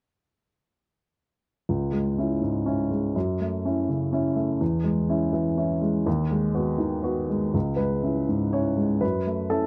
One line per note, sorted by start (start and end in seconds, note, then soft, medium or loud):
1.69 3.11 C#2 soft
1.92 2.32 G#3 soft
2.18 2.40 C#4 soft
2.18 2.40 E4 soft
2.41 2.81 G#2 soft
2.66 2.88 C#4 soft
2.66 2.88 E4 soft
2.91 3.15 G#3 soft
3.16 4.57 F#2 soft
3.41 3.79 A3 soft
3.65 3.86 C#4 soft
3.65 3.87 E4 soft
3.89 4.27 C#3 soft
4.12 4.34 C#4 soft
4.12 4.35 E4 soft
4.36 4.60 A3 soft
4.61 6.02 E2 soft
4.84 5.23 G#3 soft
5.09 5.31 C#4 soft
5.09 5.31 E4 soft
5.33 5.72 E3 soft
5.58 5.79 C#4 soft
5.58 5.80 E4 soft
5.82 6.06 G#3 soft
6.06 7.51 D#2 medium
6.31 6.69 G#3 soft
6.55 6.77 B3 soft
6.55 6.77 F#4 soft
6.78 7.19 D#3 soft
7.03 7.26 B3 soft
7.03 7.27 F#4 soft
7.30 7.55 G#3 soft
7.54 8.98 C#2 soft
7.76 8.18 G#3 soft
7.76 8.52 B4 soft
8.03 8.26 C#4 soft
8.03 8.26 E4 soft
8.29 8.68 G#2 soft
8.53 8.76 C#4 soft
8.53 8.76 E4 soft
8.53 9.02 C#5 soft
8.77 9.02 G#3 soft
9.01 9.67 F#2 soft
9.01 9.50 B4 medium
9.27 9.66 A3 soft
9.50 9.67 C#4 soft
9.50 9.67 E4 soft
9.50 9.67 A4 medium